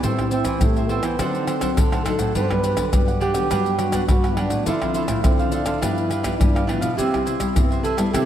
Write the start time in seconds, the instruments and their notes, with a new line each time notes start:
0.03 nylon-string guitar A2 G3 C4 E4, trombone C4, cavaquinho A4 C5 E5 G5, pandeiro, maracas, surdo
0.19 nylon-string guitar G3 C4 E4, pandeiro, tamborim, maracas, surdo
0.31 trombone C4, cavaquinho A4 C5 E5 G5, pandeiro, maracas
0.45 nylon-string guitar E3, pandeiro, tamborim, maracas, surdo
0.61 nylon-string guitar A2 E3 G3 C4 E4, trombone A3, pandeiro, tamborim, maracas, surdo
0.76 cavaquinho C5 E5 G5, pandeiro, maracas
0.89 trombone B3, cavaquinho A4 C5 E5 G5, pandeiro
1.03 nylon-string guitar E3, cavaquinho C5 E5 G5, pandeiro, tamborim, maracas
1.19 nylon-string guitar D3 F#3 C4 D#4, trombone C4, cavaquinho D4 A4 C5 F#5, pandeiro, tamborim, maracas, surdo
1.35 pandeiro, maracas
1.47 cavaquinho D4 A4 C5 F#5, pandeiro, tamborim, maracas
1.61 nylon-string guitar F#3 C4 D#4, cavaquinho D4 A4 C5 F#5, pandeiro, tamborim, maracas, surdo
1.77 nylon-string guitar A2 D3, trombone A4, pandeiro, tamborim, maracas, surdo
1.92 cavaquinho A4 C5 F#5, pandeiro, tamborim, maracas
2.04 nylon-string guitar F#3 C4 D#4, cavaquinho D4 A4 C5 F#5, trombone A4, pandeiro, tamborim, maracas, surdo
2.18 nylon-string guitar A2, cavaquinho A4 C5 F#5, pandeiro, maracas, surdo
2.35 nylon-string guitar G2 F#3 B3 D4, cavaquinho D4 G4 B4 F#5, trombone B4, pandeiro, maracas, surdo
2.42 trombone C5
2.50 nylon-string guitar F#3 B3 D4, trombone B4, pandeiro, tamborim, maracas, surdo
2.63 cavaquinho D4 G4 B4 F#5, pandeiro, maracas
2.77 nylon-string guitar D3, pandeiro, tamborim, maracas, surdo
2.92 nylon-string guitar G2 D3 F#3 B3 D4, pandeiro, tamborim, maracas, surdo
3.08 cavaquinho G4 B4 F#5, pandeiro, maracas
3.21 cavaquinho D4 G4 B4 F#5, trombone G4, pandeiro
3.34 nylon-string guitar D3 F#3 B3 D4, cavaquinho G4 B4 F#5, pandeiro, tamborim, maracas
3.50 nylon-string guitar G2 F#3 B3 D4, cavaquinho D4 G4 B4 F#5, pandeiro, tamborim, maracas, surdo
3.66 pandeiro, maracas
3.79 cavaquinho D4 G4 B4 F#5, trombone F#4, pandeiro, tamborim, maracas
3.92 nylon-string guitar F#3 B3 D4, cavaquinho D4 G4 B4 F#5, pandeiro, tamborim, maracas, surdo
4.08 nylon-string guitar G2 D3, trombone F#4, pandeiro, tamborim, maracas, surdo
4.24 nylon-string guitar F#3 B3 D4, cavaquinho G4 B4 F#5, pandeiro, tamborim, maracas
4.37 nylon-string guitar F#3 B3 D4, cavaquinho D4 G4 B4 F#5, trombone D4, pandeiro, tamborim
4.50 nylon-string guitar A2, cavaquinho G4 B4 F#5, pandeiro, maracas, surdo
4.66 nylon-string guitar D3 F3 C4 E4, cavaquinho D4 A4 C5 F5, trombone E4, pandeiro, maracas, surdo
4.82 nylon-string guitar F3 C4 E4, pandeiro, tamborim, maracas, surdo
4.94 cavaquinho D4 A4 C5 F5, trombone E4, pandeiro, maracas
5.08 nylon-string guitar A2, pandeiro, tamborim, maracas, surdo
5.24 nylon-string guitar A2 D3 F3 C4 E4, trombone C4, pandeiro, tamborim, maracas, surdo
5.39 cavaquinho A4 C5 F5, pandeiro, maracas
5.52 cavaquinho D4 A4 C5 F5, trombone D4, pandeiro, maracas
5.65 nylon-string guitar D3, cavaquinho A4 C5 F5, pandeiro, tamborim, maracas
5.81 nylon-string guitar G2 F3 B3 E4, cavaquinho D4 G4 B4 F5, trombone E4, pandeiro, tamborim, maracas, surdo
5.98 pandeiro, maracas
6.10 cavaquinho D4 G4 B4 F5, pandeiro, tamborim, maracas
6.23 nylon-string guitar F3 B3 E4, cavaquinho D4 G4 B4 F5, pandeiro, tamborim, maracas, surdo
6.40 nylon-string guitar G2 D3, trombone D4, pandeiro, tamborim, maracas, surdo
6.55 cavaquinho G4 B4 F5, pandeiro, tamborim, maracas
6.67 nylon-string guitar A2 F3 B3 E4, cavaquinho D4 G4 B4 F5, trombone E4, pandeiro, tamborim
6.81 nylon-string guitar B2, cavaquinho G4 B4 F5, pandeiro, maracas, surdo
6.97 nylon-string guitar C3 G3 B3 E4, cavaquinho E4 B4 C5 E5, trombone G4, pandeiro, maracas, surdo
7.14 nylon-string guitar G3 B3 E4, pandeiro, tamborim, maracas, surdo
7.26 cavaquinho E4 B4 C5 E5, pandeiro, maracas
7.40 nylon-string guitar G3, pandeiro, tamborim, maracas, surdo
7.56 nylon-string guitar G2 C3 G3 B3 E4, pandeiro, tamborim, maracas, surdo
7.70 cavaquinho B4 C5 E5, pandeiro, maracas
7.83 cavaquinho E4 B4 C5 E5, trombone A4, pandeiro, maracas
7.97 nylon-string guitar G3 B3 E4, cavaquinho B4 C5 E5, pandeiro, tamborim, maracas
8.13 nylon-string guitar C3 G3 B3 E4, cavaquinho E4 B4 C5 E5, trombone G4, pandeiro, tamborim, maracas, surdo